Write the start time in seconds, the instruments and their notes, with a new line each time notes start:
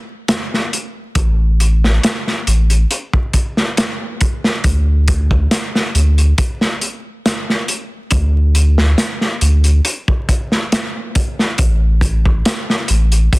0.28 snare, closed hi-hat
0.54 snare
0.73 closed hi-hat
1.15 sub bass A1, kick, closed hi-hat
1.60 closed hi-hat
1.84 snare
2.03 snare, closed hi-hat
2.27 snare
2.47 sub bass A1, closed hi-hat
2.70 closed hi-hat
2.91 closed hi-hat
3.13 kick
3.33 kick, closed hi-hat
3.57 snare
3.77 snare, closed hi-hat
4.21 kick, closed hi-hat
4.44 snare
4.64 sub bass D2, kick, closed hi-hat
5.08 kick, closed hi-hat
5.31 kick
5.51 snare, closed hi-hat
5.75 snare
5.95 sub bass D2, closed hi-hat
6.18 closed hi-hat
6.38 kick, closed hi-hat
6.61 snare
6.81 closed hi-hat
7.26 snare, closed hi-hat
7.50 snare
7.68 closed hi-hat
8.11 sub bass D2, kick, closed hi-hat
8.55 closed hi-hat
8.78 snare
8.98 snare, closed hi-hat
9.21 snare
9.41 sub bass D2, closed hi-hat
9.64 closed hi-hat
9.85 closed hi-hat
10.08 kick
10.29 kick, closed hi-hat
10.52 snare
10.72 snare, closed hi-hat
11.15 kick, closed hi-hat
11.39 snare
11.58 sub bass A1, kick, closed hi-hat
12.01 kick, closed hi-hat
12.25 kick
12.45 snare, closed hi-hat
12.70 snare
12.88 sub bass A1, closed hi-hat
13.12 closed hi-hat
13.33 kick, closed hi-hat